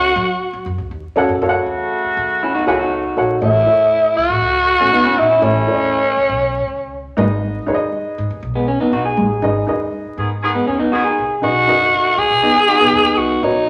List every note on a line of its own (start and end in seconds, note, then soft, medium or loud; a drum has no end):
0.00 0.11 C#2 medium
0.00 0.92 F#4 loud
0.00 0.10 C#5 medium
0.00 0.11 F#5 loud
0.16 0.36 F#3 loud
0.53 0.64 F#3 medium
0.66 0.76 F#2 medium
0.78 0.88 C#2 medium
0.91 1.01 D#2 medium
1.16 1.26 E2 medium
1.16 1.33 C#4 loud
1.16 1.34 F#4 medium
1.16 1.34 A4 medium
1.16 1.34 C#5 medium
1.16 1.34 F#5 medium
1.29 1.39 F#2 medium
1.42 1.61 F#2 medium
1.42 3.14 C#3 medium
1.42 3.14 A3 medium
1.42 2.11 F#4 medium
1.42 3.14 F#4 loud
1.42 2.11 A4 medium
1.42 2.11 C#5 medium
1.42 1.48 F5 medium
1.49 2.14 F#5 loud
1.66 1.86 E2 medium
2.05 muted upright bass stroke soft
2.17 2.57 D#2 medium
2.43 2.54 C#4 medium
2.43 2.54 E4 medium
2.55 2.67 D#4 medium
2.55 2.66 F#4 medium
2.66 3.07 C#2 medium
2.66 2.79 E4 medium
2.66 3.01 F#4 medium
2.66 2.79 G#4 medium
2.66 3.01 A4 medium
2.66 3.02 C#5 medium
2.66 3.02 F#5 medium
2.80 3.39 D#4 medium
2.80 3.39 F#4 medium
3.16 3.37 A#1 medium
3.16 3.34 F#4 medium
3.16 3.34 A4 medium
3.16 3.34 C#5 medium
3.16 3.35 F#5 medium
3.41 3.62 A1 loud
3.41 4.13 A2 medium
3.41 3.59 E4 medium
3.41 4.18 E4 loud
3.41 3.59 A4 medium
3.41 3.59 C#5 medium
3.41 3.60 E5 medium
3.66 4.36 E4 medium
3.66 4.36 A4 medium
3.66 4.36 C#5 medium
3.66 4.37 E5 medium
4.17 4.27 C#2 medium
4.17 5.20 F#4 loud
4.30 4.40 A1 medium
4.42 4.72 C#2 medium
4.80 4.90 A1 medium
4.80 4.92 A3 medium
4.80 4.92 C#4 medium
4.92 5.12 C#2 medium
4.92 5.05 B3 medium
4.92 5.04 D#4 medium
5.04 5.17 C#4 medium
5.04 5.16 E4 medium
5.17 5.37 A#1 medium
5.17 5.30 D#4 medium
5.17 5.45 E4 medium
5.17 5.29 F#4 medium
5.30 6.02 C#4 medium
5.30 6.01 E4 medium
5.41 5.62 A1 loud
5.41 6.13 A2 medium
5.41 7.18 C#4 loud
5.41 5.59 E4 medium
5.41 5.59 A4 medium
5.41 5.60 C#5 medium
5.41 5.60 E5 medium
5.67 6.36 E4 medium
5.67 6.37 A4 medium
5.67 6.37 C#5 medium
5.67 5.74 D5 medium
5.75 6.40 D#5 medium
6.17 6.27 C#2 medium
6.29 6.59 B1 medium
6.67 7.07 C#2 medium
7.17 7.57 G#1 loud
7.17 7.89 G#2 medium
7.17 7.57 D#4 loud
7.17 7.57 G#4 medium
7.17 7.58 B4 medium
7.17 7.58 D#5 loud
7.66 7.97 D#2 medium
7.66 8.36 D#4 medium
7.66 8.36 G#4 medium
7.66 8.37 B4 medium
7.66 7.74 C#5 medium
7.74 8.40 D#5 loud
8.18 8.28 G#2 loud
8.30 8.40 D#2 medium
8.43 8.73 B1 loud
8.55 8.67 G#3 medium
8.55 8.67 B3 medium
8.68 8.80 C#4 medium
8.81 8.93 B3 medium
8.81 8.92 D#4 medium
8.93 9.13 B1 loud
8.93 9.05 D#4 medium
8.93 9.05 F#4 medium
9.05 9.77 G#4 medium
9.17 9.37 A1 loud
9.17 9.89 G#2 medium
9.42 9.62 G#1 medium
9.42 9.60 D#4 medium
9.42 9.60 G#4 medium
9.42 9.60 B4 medium
9.42 9.61 D#5 medium
9.67 9.88 D#2 medium
9.67 10.36 D#4 medium
9.67 10.37 G#4 medium
9.67 10.37 B4 medium
9.67 10.37 D#5 medium
10.05 muted upright bass stroke soft
10.18 10.58 G#2 medium
10.18 10.28 D#3 medium
10.18 10.28 B3 medium
10.18 10.28 G#4 medium
10.43 10.51 D#3 medium
10.43 10.51 B3 medium
10.43 10.51 G#4 loud
10.55 10.67 G#3 medium
10.55 10.67 B3 medium
10.67 10.88 E2 medium
10.67 10.79 D#3 medium
10.67 10.79 B3 medium
10.67 10.79 C#4 medium
10.67 10.79 G#4 medium
10.80 10.92 B3 medium
10.80 10.91 D#4 medium
10.92 11.13 D#2 medium
10.92 11.29 D#3 medium
10.92 11.28 B3 medium
10.92 11.05 D#4 medium
10.92 11.04 F#4 medium
10.92 11.28 G#4 loud
11.05 11.76 G#4 medium
11.18 11.38 C2 medium
11.42 11.63 B1 medium
11.42 12.14 B2 medium
11.42 11.60 D#4 medium
11.42 11.60 F#4 medium
11.42 12.20 F#4 loud
11.42 11.60 B4 medium
11.42 11.60 D#5 medium
11.67 11.98 F#1 medium
11.67 12.37 D#4 medium
11.67 12.37 F#4 medium
11.67 12.37 B4 medium
11.67 12.38 D#5 medium
12.18 12.28 C#2 medium
12.18 13.19 G#4 loud
12.30 12.43 B1 medium
12.43 12.73 D#2 medium
12.43 12.55 B3 medium
12.43 12.55 D#4 medium
12.55 12.67 G#4 medium
12.68 12.79 D#4 medium
12.68 12.80 F#4 medium
12.80 12.91 B1 medium
12.80 13.40 B3 medium
12.80 13.40 D#4 medium
12.93 13.18 D#2 medium
13.17 13.38 C2 medium
13.17 13.45 F#4 medium
13.42 13.63 B1 loud
13.42 13.69 B2 medium
13.42 13.60 D#4 medium
13.42 13.69 D#4 loud
13.42 13.60 F#4 medium
13.42 13.61 B4 medium
13.42 13.61 C#5 medium